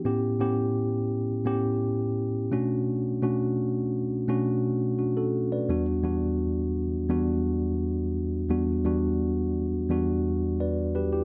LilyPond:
\new Staff \with { instrumentName = "Tine electric piano" } { \time 4/4 \key e \dorian \tempo 4 = 85 << { r1 | r2. <d' fis'>16 <fis' a'>8 <b' d''>16~ | <b' d''>16 r2. r8. | r2. <b' d''>8 <g' b'>16 <e' g'>16 | } \\ { <a, b cis' e' g'>8 <a, b cis' e' g'>4 r8 <a, b cis' e' g'>4. <b, a cis' d' fis'>8~ | <b, a cis' d' fis'>8 <b, a cis' d' fis'>4 r8 <b, a cis' d' fis'>4. r8 | <e, g b d' fis'>8 <e, g b d' fis'>4 r8 <e, g b d' fis'>4. r8 | <e, g b d' fis'>8 <e, g b d' fis'>4 r8 <e, g b d' fis'>4. r8 | } >> }